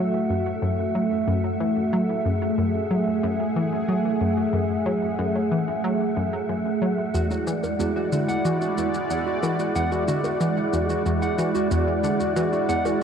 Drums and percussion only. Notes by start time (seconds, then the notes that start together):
7.15 shaker
7.31 shaker
7.47 shaker
7.63 low bongo, shaker
7.80 shaker
8.12 shaker
8.29 shaker
8.45 shaker
8.61 shaker
8.78 shaker
8.94 shaker
9.10 shaker
9.43 low bongo, shaker
9.59 shaker
9.75 shaker
9.92 shaker
10.08 shaker
10.24 low bongo, shaker
10.41 shaker
10.73 shaker
10.90 shaker
11.06 shaker
11.22 shaker
11.38 shaker
11.55 shaker
11.71 shaker
12.04 shaker
12.20 shaker
12.36 shaker
12.53 shaker
12.69 shaker
12.85 low bongo, shaker